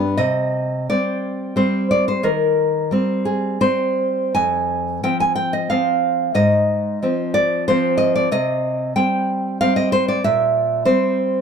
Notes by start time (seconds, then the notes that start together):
Already playing: G2 B3 D4 G4 B4
0.17 C3 D#5
0.90 G3 C4 D5
1.56 G3 C4 C5
1.91 D5
2.08 C5
2.23 D#3 A#4
2.91 G3 C4
3.25 G#4
3.61 G3 C4 C5
4.35 F2 G#5
5.03 F3 C4 G5
5.20 G#5
5.36 G5
5.53 D#5
5.70 F3 C4 F5
6.34 G#2 D#5
7.02 F3 C4
7.34 D5
7.68 F3 C4 C5
7.98 D#5
8.15 D5
8.32 C3 D#5
8.96 G3 C4 G5
9.61 G3 C4 F5
9.76 D#5
9.92 C5
10.08 D5
10.24 A#2 E5
10.85 G3 C4 C5